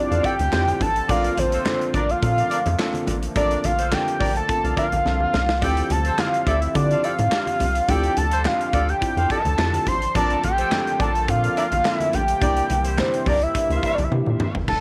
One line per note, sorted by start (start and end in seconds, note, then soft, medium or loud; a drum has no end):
0.00 10.11 D3 medium
0.00 10.11 F3 medium
0.00 1.05 G3 medium
0.00 0.31 C4 medium
0.00 1.05 C4 medium
0.00 1.05 D4 medium
0.00 0.31 E4 medium
0.00 0.31 F4 medium
0.00 0.32 G4 medium
0.00 0.26 D5 loud
0.10 0.21 F2 loud
0.10 0.21 A4 medium
0.10 0.21 C5 medium
0.10 0.21 F5 medium
0.10 closed hi-hat soft
0.23 0.33 G4 medium
0.23 0.33 A4 medium
0.23 0.33 D5 loud
0.23 0.83 G5 loud
0.23 kick medium
0.23 closed hi-hat medium
0.23 muted conga soft
0.39 0.49 D2 medium
0.39 closed hi-hat soft
0.39 high conga medium
0.52 0.73 F2 medium
0.52 0.88 C4 medium
0.52 0.88 E4 medium
0.52 0.88 F4 medium
0.52 0.88 G4 medium
0.52 snare loud
0.52 clap medium
0.52 muted conga soft
0.67 closed hi-hat medium
0.67 high conga medium
0.81 1.01 A1 loud
0.81 1.12 A5 loud
0.81 kick loud
0.81 closed hi-hat medium
0.81 muted conga soft
0.81 low conga medium
0.96 closed hi-hat medium
1.08 1.30 A#1 loud
1.08 5.58 A3 medium
1.08 5.58 A#3 medium
1.08 1.44 C4 medium
1.08 1.44 D4 medium
1.08 1.32 D4 loud
1.08 3.33 F4 medium
1.08 1.44 F4 medium
1.08 1.44 A4 medium
1.08 1.32 A#4 loud
1.08 1.32 D5 loud
1.08 1.40 F5 loud
1.08 kick loud
1.08 closed hi-hat loud
1.08 muted conga soft
1.08 low conga medium
1.24 closed hi-hat medium
1.38 1.58 A#1 loud
1.38 1.95 C5 loud
1.38 closed hi-hat medium
1.38 muted conga soft
1.38 high conga medium
1.52 1.63 F4 medium
1.52 1.63 A4 medium
1.52 1.63 C5 medium
1.52 closed hi-hat medium
1.65 2.01 C4 medium
1.65 2.01 D4 medium
1.65 2.01 F4 medium
1.65 2.01 A4 medium
1.65 snare loud
1.65 clap loud
1.65 muted conga soft
1.65 high conga medium
1.81 closed hi-hat soft
1.94 2.15 A#1 medium
1.94 2.06 D4 medium
1.94 2.06 A#4 medium
1.94 2.06 D5 loud
1.94 2.12 D5 medium
1.94 kick loud
1.94 closed hi-hat medium
1.94 muted conga soft
1.94 high conga medium
2.09 3.08 F5 loud
2.09 closed hi-hat soft
2.22 2.43 A#2 loud
2.22 2.58 C4 medium
2.22 2.58 D4 medium
2.22 2.58 F4 medium
2.22 2.58 A4 medium
2.22 kick loud
2.22 closed hi-hat medium
2.38 2.48 A#4 medium
2.38 2.48 D5 medium
2.38 2.48 F5 medium
2.38 closed hi-hat soft
2.50 2.60 D4 medium
2.50 2.60 A#4 medium
2.50 2.60 D5 loud
2.50 closed hi-hat medium
2.50 muted conga soft
2.66 2.76 F2 loud
2.66 closed hi-hat soft
2.66 high conga medium
2.79 3.14 C4 loud
2.79 3.14 D4 medium
2.79 3.15 F4 loud
2.79 3.15 A4 loud
2.79 snare loud
2.79 clap loud
2.94 closed hi-hat medium
2.94 high conga medium
3.07 3.28 A1 loud
3.07 closed hi-hat medium
3.07 muted conga soft
3.07 low conga medium
3.23 closed hi-hat medium
3.36 3.56 A#1 loud
3.36 3.71 C4 medium
3.36 3.71 D4 medium
3.36 3.59 D4 loud
3.36 3.71 F4 medium
3.36 3.71 A4 loud
3.36 3.59 A#4 loud
3.36 3.59 D5 loud
3.36 3.66 D5 loud
3.36 kick loud
3.36 closed hi-hat loud
3.36 low conga medium
3.51 closed hi-hat medium
3.64 3.95 A#1 loud
3.64 3.95 F5 medium
3.64 closed hi-hat medium
3.64 muted conga soft
3.64 high conga medium
3.79 3.90 F4 medium
3.79 3.90 A4 medium
3.79 3.90 C5 medium
3.79 closed hi-hat medium
3.91 4.27 C4 medium
3.91 4.28 D4 medium
3.91 4.28 F4 medium
3.91 4.28 A4 medium
3.91 4.36 G5 loud
3.91 snare loud
3.91 clap loud
3.91 high conga medium
4.08 closed hi-hat soft
4.20 4.41 A#1 medium
4.20 4.33 D4 medium
4.20 4.33 A#4 loud
4.20 4.32 D5 loud
4.20 kick loud
4.20 open hi-hat medium
4.20 high conga medium
4.36 4.75 A5 loud
4.36 closed hi-hat soft
4.49 4.84 C4 medium
4.49 4.84 D4 medium
4.49 4.84 F4 medium
4.49 4.85 A4 medium
4.49 kick loud
4.49 closed hi-hat medium
4.64 4.74 C2 medium
4.64 4.74 A#4 medium
4.64 4.74 D5 medium
4.64 4.75 F5 medium
4.64 closed hi-hat soft
4.76 4.86 D4 medium
4.76 4.86 A#4 medium
4.76 4.86 D5 medium
4.76 5.65 F5 loud
4.76 kick medium
4.76 closed hi-hat medium
4.76 high conga medium
4.92 5.02 A#1 medium
4.92 closed hi-hat soft
4.92 high conga medium
5.05 5.26 C2 loud
5.05 5.41 C4 medium
5.05 5.41 D4 medium
5.05 5.41 F4 medium
5.05 5.41 A4 medium
5.05 snare medium
5.20 high conga medium
5.33 5.64 C2 loud
5.33 snare medium
5.33 muted conga soft
5.33 low conga medium
5.49 snare loud
5.62 5.83 D2 loud
5.62 10.11 G3 medium
5.62 5.97 C4 medium
5.62 7.86 C4 medium
5.62 5.97 E4 medium
5.62 5.98 F4 medium
5.62 5.85 G4 loud
5.62 5.98 G4 medium
5.62 5.85 A4 loud
5.62 5.85 D5 loud
5.62 5.93 G5 loud
5.62 kick loud
5.62 closed hi-hat loud
5.62 muted conga soft
5.62 low conga medium
5.77 closed hi-hat medium
5.90 6.11 D2 loud
5.90 6.21 A5 loud
5.90 closed hi-hat medium
5.90 muted conga soft
5.90 high conga medium
6.05 6.16 G4 medium
6.05 6.16 A4 medium
6.05 6.16 C5 medium
6.05 closed hi-hat medium
6.18 6.54 C4 medium
6.18 6.54 E4 medium
6.18 6.54 F4 medium
6.18 6.54 G4 medium
6.18 6.49 F5 loud
6.18 snare loud
6.18 clap loud
6.18 muted conga soft
6.18 high conga medium
6.34 closed hi-hat medium
6.47 6.67 D2 loud
6.47 6.59 G4 loud
6.47 6.59 A4 medium
6.47 6.59 D5 loud
6.47 6.75 E5 medium
6.47 kick loud
6.47 closed hi-hat medium
6.47 high conga medium
6.62 closed hi-hat soft
6.75 6.96 D3 loud
6.75 7.10 C4 medium
6.75 7.10 E4 medium
6.75 7.10 F4 medium
6.75 7.11 G4 medium
6.75 7.06 D5 loud
6.75 kick loud
6.75 closed hi-hat medium
6.91 7.01 A4 medium
6.91 7.01 C5 medium
6.91 7.01 F5 medium
6.91 closed hi-hat soft
7.03 7.13 G4 medium
7.03 7.13 A4 medium
7.03 7.13 D5 medium
7.03 7.91 F5 loud
7.03 closed hi-hat medium
7.03 muted conga soft
7.19 7.28 A2 medium
7.19 closed hi-hat soft
7.19 high conga medium
7.31 7.67 C4 medium
7.31 7.67 D4 medium
7.31 7.67 F4 medium
7.31 7.67 G4 medium
7.31 snare loud
7.31 clap medium
7.47 closed hi-hat medium
7.47 high conga medium
7.60 7.81 C2 loud
7.60 closed hi-hat medium
7.60 low conga medium
7.75 closed hi-hat medium
7.88 8.09 D2 loud
7.88 8.24 C4 medium
7.88 10.13 D4 medium
7.88 8.24 E4 medium
7.88 8.24 F4 medium
7.88 8.11 G4 loud
7.88 8.24 G4 medium
7.88 8.11 A4 loud
7.88 8.11 D5 loud
7.88 8.19 G5 loud
7.88 kick loud
7.88 closed hi-hat loud
7.88 low conga medium
8.04 closed hi-hat medium
8.17 8.48 D2 medium
8.17 8.48 A5 loud
8.17 closed hi-hat medium
8.17 muted conga soft
8.17 high conga medium
8.31 8.43 G4 medium
8.31 8.43 A4 medium
8.31 8.43 C5 medium
8.31 closed hi-hat medium
8.45 8.80 C4 medium
8.45 8.80 D4 medium
8.45 8.81 F4 medium
8.45 8.81 G4 medium
8.45 8.91 F5 loud
8.45 snare loud
8.45 clap loud
8.45 high conga medium
8.61 closed hi-hat soft
8.73 8.94 D2 loud
8.73 8.86 G4 medium
8.73 8.86 A4 medium
8.73 8.86 D5 loud
8.73 kick loud
8.73 closed hi-hat medium
8.73 high conga medium
8.89 9.32 G5 loud
8.89 closed hi-hat soft
9.01 9.37 C4 medium
9.01 9.37 E4 medium
9.01 9.37 F4 medium
9.01 9.37 G4 medium
9.01 kick loud
9.01 closed hi-hat medium
9.01 muted conga soft
9.17 9.26 F2 loud
9.17 9.28 A4 medium
9.17 9.28 C5 medium
9.17 9.28 F5 medium
9.17 closed hi-hat soft
9.30 9.42 G4 medium
9.30 9.42 A4 medium
9.30 9.42 D5 loud
9.30 9.89 A5 loud
9.30 kick medium
9.30 closed hi-hat medium
9.45 9.55 D2 medium
9.45 closed hi-hat medium
9.45 high conga medium
9.58 9.79 F2 medium
9.58 9.93 C4 medium
9.58 9.93 E4 medium
9.58 9.94 F4 medium
9.58 9.94 G4 loud
9.58 snare loud
9.58 clap medium
9.73 closed hi-hat medium
9.73 high conga medium
9.86 10.07 A1 loud
9.86 10.16 C6 loud
9.86 kick medium
9.86 closed hi-hat medium
9.86 low conga medium
10.02 closed hi-hat medium
10.15 10.36 A#1 loud
10.15 12.40 D3 medium
10.15 12.39 F3 medium
10.15 12.39 A3 medium
10.15 14.64 A#3 medium
10.15 10.50 C4 medium
10.15 10.50 D4 medium
10.15 10.38 D4 loud
10.15 10.50 F4 medium
10.15 12.39 F4 medium
10.15 10.51 A4 medium
10.15 10.38 A#4 loud
10.15 10.38 D5 loud
10.15 10.42 A5 loud
10.15 kick loud
10.15 closed hi-hat loud
10.15 muted conga soft
10.15 low conga medium
10.30 closed hi-hat medium
10.44 10.64 A#1 loud
10.44 11.03 G5 loud
10.44 closed hi-hat medium
10.44 muted conga soft
10.44 high conga medium
10.58 10.69 F4 medium
10.58 10.69 A4 medium
10.58 10.69 C5 medium
10.58 closed hi-hat medium
10.72 11.07 C4 medium
10.72 11.07 D4 medium
10.72 11.07 F4 medium
10.72 11.07 A4 medium
10.72 snare loud
10.72 clap loud
10.72 muted conga soft
10.72 high conga medium
10.87 closed hi-hat soft
11.00 11.30 A#1 loud
11.00 11.12 D4 medium
11.00 11.12 A#4 medium
11.00 11.12 D5 loud
11.00 11.31 A5 loud
11.00 kick loud
11.00 closed hi-hat medium
11.00 high conga medium
11.15 closed hi-hat soft
11.28 11.49 A#2 loud
11.28 11.63 C4 medium
11.28 11.64 D4 medium
11.28 11.64 F4 medium
11.28 11.64 A4 medium
11.28 11.57 F5 loud
11.28 kick loud
11.28 closed hi-hat medium
11.43 11.54 A#4 medium
11.43 11.54 D5 medium
11.43 11.54 F5 medium
11.43 closed hi-hat medium
11.56 11.66 D4 medium
11.56 11.66 A#4 medium
11.56 11.66 D5 medium
11.56 11.96 F5 loud
11.56 closed hi-hat medium
11.56 muted conga soft
11.72 11.81 A#1 medium
11.72 closed hi-hat medium
11.72 high conga medium
11.85 12.20 C4 medium
11.85 12.20 D4 medium
11.85 12.20 F4 medium
11.85 12.21 A4 medium
11.85 snare loud
11.85 clap medium
11.96 12.16 E5 loud
12.00 closed hi-hat medium
12.00 high conga medium
12.13 12.34 A#1 loud
12.13 12.99 G5 loud
12.13 closed hi-hat medium
12.13 muted conga soft
12.13 low conga medium
12.28 closed hi-hat medium
12.41 12.62 C2 loud
12.41 14.66 C3 medium
12.41 14.66 E3 medium
12.41 14.66 G3 medium
12.41 12.77 A#3 medium
12.41 12.77 D4 medium
12.41 14.66 E4 medium
12.41 12.77 E4 medium
12.41 12.64 G4 loud
12.41 12.77 G4 medium
12.41 12.64 A#4 loud
12.41 12.64 D5 loud
12.41 kick loud
12.41 closed hi-hat loud
12.41 muted conga soft
12.41 low conga medium
12.57 closed hi-hat medium
12.70 13.01 C2 loud
12.70 closed hi-hat medium
12.70 high conga medium
12.85 12.96 E4 medium
12.85 12.96 G4 medium
12.85 12.96 C5 medium
12.85 closed hi-hat medium
12.98 13.33 A#3 medium
12.98 13.33 D4 medium
12.98 13.33 E4 medium
12.98 13.34 G4 medium
12.98 13.29 C5 medium
12.98 snare loud
12.98 clap loud
12.98 muted conga soft
12.98 high conga medium
13.14 closed hi-hat medium
13.26 13.47 C2 medium
13.26 13.39 G4 medium
13.26 13.39 A#4 medium
13.26 13.39 D5 loud
13.26 13.44 D5 medium
13.26 kick medium
13.26 open hi-hat medium
13.26 muted conga soft
13.26 high conga medium
13.26 low conga medium
13.42 13.77 E5 medium
13.42 closed hi-hat soft
13.55 13.90 A#3 medium
13.55 13.90 D4 medium
13.55 13.90 E4 medium
13.55 13.90 G4 medium
13.55 kick loud
13.55 closed hi-hat medium
13.70 13.79 D2 medium
13.70 13.81 A#4 medium
13.70 13.81 C5 medium
13.70 13.81 E5 medium
13.70 closed hi-hat soft
13.76 13.86 F5 medium
13.83 13.95 A#4 medium
13.83 13.95 C5 medium
13.83 13.95 E5 medium
13.83 13.96 E5 medium
13.83 kick medium
13.83 closed hi-hat medium
13.94 14.08 C2 medium
13.94 14.05 D5 medium
13.94 closed hi-hat soft
13.99 high conga medium
14.04 14.12 E5 medium
14.11 14.22 C3 loud
14.11 14.46 A#3 medium
14.11 14.47 D4 medium
14.11 14.47 E4 medium
14.11 14.47 G4 medium
14.11 high tom medium
14.11 muted conga soft
14.26 14.36 A#2 medium
14.26 high conga medium
14.40 mid tom loud
14.40 muted conga soft
14.40 low conga medium
14.55 14.65 G1 loud
14.55 floor tom loud
14.68 14.80 F1 loud
14.68 14.80 C3 medium
14.68 14.80 F3 medium
14.68 14.80 A3 medium
14.68 14.80 D4 medium
14.68 14.80 F4 medium
14.68 14.80 A5 loud
14.68 kick loud
14.68 crash medium
14.68 muted conga soft
14.68 low conga medium